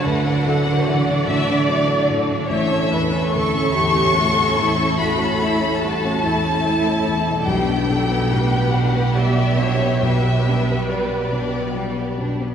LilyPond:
<<
  \new Staff \with { instrumentName = "Violin section" } { \time 3/4 \key g \lydian \tempo 4 = 72 fis''4. e''8 d''8 r8 | e''4 cis'''2 | b''4 a''2 | g''4. fis''8 e''4 |
e''4 d''4. r8 | }
  \new Staff \with { instrumentName = "Viola section" } { \time 3/4 \key g \lydian b'8 a'8 d''2 | cis''8 b'8 a'8 g'8 fis'8 e'8 | fis'8 e'8 fis'8 e'4. | g'8 a'8 b'4 d''8 cis''8 |
b'2~ b'8 r8 | }
  \new Staff \with { instrumentName = "Violin section" } { \time 3/4 \key g \lydian << { fis'2. | a'2.~ | a'2. | g'2.~ |
g'2~ g'8. r16 | } \\ { a16 d'16 a16 d'16 a16 d'16 a16 d'16 a16 d'16 a16 d'16 | a16 cis'16 e'16 cis'16 a16 cis'16 e'16 cis'16 a16 cis'16 e'16 cis'16 | a16 cis'16 e'16 cis'16 a16 cis'16 e'16 cis'16 a16 cis'16 e'16 cis'16 | g16 b16 d'16 b16 g16 b16 d'16 b16 g16 b16 d'16 b16 |
g16 b16 d'16 b16 g16 b16 d'16 b16 g16 b16 d'16 b16 | } >> }
  \new Staff \with { instrumentName = "Harp" } { \time 3/4 \key g \lydian <d fis d'>2. | <a, a cis' e'>2.~ | <a, a cis' e'>2. | <b, g d' g'>2.~ |
<b, g d' g'>2. | }
  \new Staff \with { instrumentName = "Cello section" } { \clef bass \time 3/4 \key g \lydian d2. | a,2.~ | a,2. | b,2.~ |
b,2~ b,8. r16 | }
  \new Staff \with { instrumentName = "Grand piano" } { \clef bass \time 3/4 \key g \lydian <d, a,>8 fis8 e8 a,8 fis8 a,8 | a,,8 e,8 d,8 e,8 a8 e,8 | a,,8 a8 g8 e,8 a8 e,8 | b,,8 b,8 a,8 b,8 g8 b,8 |
b,,8 g8 g8 b,8 g8 b,8 | }
>>